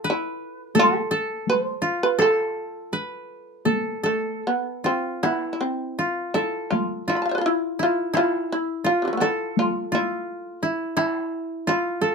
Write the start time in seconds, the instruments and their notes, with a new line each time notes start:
Already playing: koto F4 A4
0.04 koto B4
0.10 shamisen E4
0.75 koto A4, taiko high
0.79 shamisen A4
1.11 koto A4
1.47 shamisen B4, taiko high
1.62 shamisen C5
1.82 koto F4
2.03 shamisen B4
2.19 koto A4, shamisen A4, taiko rim
2.93 koto B4
3.65 koto A4, taiko high
4.03 shamisen A3, koto A4
4.47 shamisen B3
4.84 shamisen C4, koto F4
5.23 shamisen B3, koto E4, taiko rim
5.53 shamisen E4
5.61 shamisen C4
5.99 koto F4
6.34 shamisen E4, koto A4
6.71 shamisen F4, taiko high
7.08 shamisen E4, koto F4
7.16 shamisen B5
7.22 shamisen F5 A5
7.29 shamisen C5 E5
7.35 shamisen A4 B4
7.41 shamisen F4
7.46 shamisen E4
7.79 koto E4, shamisen F4
8.14 koto E4, shamisen F4, taiko rim
8.52 shamisen E4
8.84 koto F4, shamisen F4
9.02 shamisen C3 E3
9.08 shamisen F3
9.13 shamisen A3
9.17 shamisen B3, koto A4
9.22 shamisen E4
9.57 shamisen F4, taiko high
9.92 shamisen E4, koto F4, taiko high
10.63 koto E4
10.97 koto E4, taiko rim
11.67 shamisen E4, koto F4
12.01 koto A4